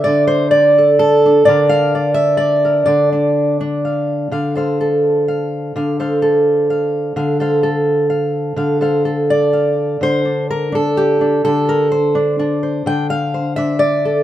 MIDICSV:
0, 0, Header, 1, 2, 480
1, 0, Start_track
1, 0, Key_signature, -1, "minor"
1, 0, Tempo, 468750
1, 55, Time_signature, 3, 2, 24, 8
1, 2935, Tempo, 481155
1, 5815, Tempo, 469116
1, 8695, Tempo, 479616
1, 11575, Tempo, 471328
1, 14414, End_track
2, 0, Start_track
2, 0, Title_t, "Steel-string acoustic guitar"
2, 0, Program_c, 0, 25
2, 0, Note_on_c, 0, 76, 85
2, 40, Note_on_c, 0, 74, 88
2, 60, Note_on_c, 0, 50, 68
2, 277, Note_off_c, 0, 74, 0
2, 281, Note_on_c, 0, 72, 88
2, 517, Note_off_c, 0, 72, 0
2, 521, Note_on_c, 0, 74, 85
2, 530, Note_off_c, 0, 76, 0
2, 802, Note_on_c, 0, 69, 43
2, 1004, Note_off_c, 0, 69, 0
2, 1017, Note_on_c, 0, 69, 88
2, 1287, Note_on_c, 0, 62, 47
2, 1475, Note_off_c, 0, 74, 0
2, 1487, Note_on_c, 0, 74, 91
2, 1500, Note_off_c, 0, 69, 0
2, 1503, Note_off_c, 0, 50, 0
2, 1507, Note_on_c, 0, 50, 70
2, 1514, Note_off_c, 0, 62, 0
2, 1518, Note_on_c, 0, 62, 49
2, 1526, Note_on_c, 0, 70, 47
2, 1734, Note_on_c, 0, 77, 94
2, 1970, Note_off_c, 0, 74, 0
2, 1996, Note_on_c, 0, 74, 48
2, 2191, Note_off_c, 0, 77, 0
2, 2195, Note_on_c, 0, 76, 95
2, 2426, Note_off_c, 0, 74, 0
2, 2430, Note_on_c, 0, 74, 93
2, 2699, Note_off_c, 0, 70, 0
2, 2711, Note_on_c, 0, 70, 45
2, 2913, Note_off_c, 0, 74, 0
2, 2916, Note_off_c, 0, 70, 0
2, 2925, Note_off_c, 0, 76, 0
2, 2925, Note_on_c, 0, 74, 85
2, 2932, Note_off_c, 0, 50, 0
2, 2936, Note_on_c, 0, 50, 67
2, 3189, Note_off_c, 0, 62, 0
2, 3193, Note_on_c, 0, 62, 40
2, 3660, Note_off_c, 0, 62, 0
2, 3673, Note_on_c, 0, 62, 47
2, 3915, Note_on_c, 0, 77, 42
2, 4360, Note_off_c, 0, 62, 0
2, 4360, Note_off_c, 0, 77, 0
2, 4368, Note_off_c, 0, 50, 0
2, 4372, Note_off_c, 0, 74, 0
2, 4380, Note_on_c, 0, 50, 57
2, 4388, Note_on_c, 0, 77, 51
2, 4620, Note_on_c, 0, 69, 42
2, 4631, Note_on_c, 0, 72, 43
2, 4636, Note_off_c, 0, 77, 0
2, 4640, Note_on_c, 0, 77, 48
2, 4866, Note_off_c, 0, 69, 0
2, 4870, Note_on_c, 0, 69, 48
2, 5342, Note_off_c, 0, 77, 0
2, 5346, Note_on_c, 0, 77, 46
2, 5814, Note_off_c, 0, 50, 0
2, 5818, Note_on_c, 0, 50, 61
2, 5822, Note_off_c, 0, 77, 0
2, 5826, Note_on_c, 0, 77, 57
2, 5849, Note_off_c, 0, 72, 0
2, 6060, Note_off_c, 0, 69, 0
2, 6064, Note_on_c, 0, 69, 44
2, 6068, Note_on_c, 0, 72, 45
2, 6070, Note_off_c, 0, 77, 0
2, 6074, Note_on_c, 0, 77, 51
2, 6291, Note_off_c, 0, 69, 0
2, 6295, Note_on_c, 0, 69, 49
2, 6782, Note_off_c, 0, 77, 0
2, 6786, Note_on_c, 0, 77, 51
2, 7252, Note_off_c, 0, 50, 0
2, 7256, Note_off_c, 0, 77, 0
2, 7256, Note_on_c, 0, 50, 63
2, 7260, Note_on_c, 0, 77, 56
2, 7288, Note_off_c, 0, 72, 0
2, 7496, Note_off_c, 0, 69, 0
2, 7501, Note_on_c, 0, 69, 49
2, 7511, Note_on_c, 0, 72, 45
2, 7512, Note_off_c, 0, 77, 0
2, 7516, Note_on_c, 0, 77, 52
2, 7733, Note_off_c, 0, 69, 0
2, 7738, Note_on_c, 0, 69, 54
2, 8210, Note_off_c, 0, 77, 0
2, 8214, Note_on_c, 0, 77, 50
2, 8687, Note_off_c, 0, 50, 0
2, 8691, Note_on_c, 0, 50, 59
2, 8697, Note_off_c, 0, 77, 0
2, 8701, Note_on_c, 0, 77, 55
2, 8721, Note_off_c, 0, 72, 0
2, 8932, Note_off_c, 0, 69, 0
2, 8935, Note_off_c, 0, 77, 0
2, 8936, Note_on_c, 0, 69, 45
2, 8945, Note_on_c, 0, 72, 42
2, 8951, Note_on_c, 0, 77, 50
2, 9167, Note_off_c, 0, 69, 0
2, 9179, Note_on_c, 0, 69, 47
2, 9426, Note_off_c, 0, 72, 0
2, 9430, Note_on_c, 0, 74, 83
2, 9648, Note_off_c, 0, 77, 0
2, 9660, Note_on_c, 0, 77, 44
2, 10117, Note_off_c, 0, 77, 0
2, 10119, Note_off_c, 0, 69, 0
2, 10124, Note_off_c, 0, 50, 0
2, 10136, Note_on_c, 0, 50, 63
2, 10153, Note_off_c, 0, 74, 0
2, 10157, Note_on_c, 0, 72, 88
2, 10380, Note_on_c, 0, 62, 36
2, 10629, Note_off_c, 0, 72, 0
2, 10634, Note_on_c, 0, 70, 76
2, 10847, Note_off_c, 0, 62, 0
2, 10851, Note_on_c, 0, 62, 54
2, 10865, Note_off_c, 0, 70, 0
2, 10880, Note_on_c, 0, 69, 81
2, 11102, Note_on_c, 0, 67, 75
2, 11335, Note_off_c, 0, 62, 0
2, 11339, Note_on_c, 0, 62, 41
2, 11564, Note_off_c, 0, 69, 0
2, 11576, Note_on_c, 0, 69, 85
2, 11578, Note_off_c, 0, 50, 0
2, 11582, Note_on_c, 0, 50, 62
2, 11822, Note_on_c, 0, 70, 74
2, 12050, Note_off_c, 0, 70, 0
2, 12054, Note_on_c, 0, 72, 69
2, 12056, Note_off_c, 0, 67, 0
2, 12085, Note_off_c, 0, 62, 0
2, 12292, Note_on_c, 0, 62, 58
2, 12293, Note_off_c, 0, 69, 0
2, 12537, Note_off_c, 0, 62, 0
2, 12541, Note_on_c, 0, 62, 45
2, 12769, Note_off_c, 0, 72, 0
2, 12781, Note_on_c, 0, 72, 43
2, 13012, Note_off_c, 0, 50, 0
2, 13016, Note_on_c, 0, 50, 68
2, 13026, Note_on_c, 0, 79, 102
2, 13046, Note_off_c, 0, 72, 0
2, 13257, Note_off_c, 0, 79, 0
2, 13261, Note_on_c, 0, 77, 98
2, 13507, Note_on_c, 0, 72, 45
2, 13537, Note_off_c, 0, 62, 0
2, 13727, Note_off_c, 0, 77, 0
2, 13731, Note_on_c, 0, 76, 91
2, 13749, Note_on_c, 0, 62, 57
2, 13961, Note_off_c, 0, 72, 0
2, 13965, Note_on_c, 0, 74, 93
2, 14230, Note_on_c, 0, 69, 43
2, 14414, Note_off_c, 0, 50, 0
2, 14414, Note_off_c, 0, 62, 0
2, 14414, Note_off_c, 0, 69, 0
2, 14414, Note_off_c, 0, 74, 0
2, 14414, Note_off_c, 0, 76, 0
2, 14414, End_track
0, 0, End_of_file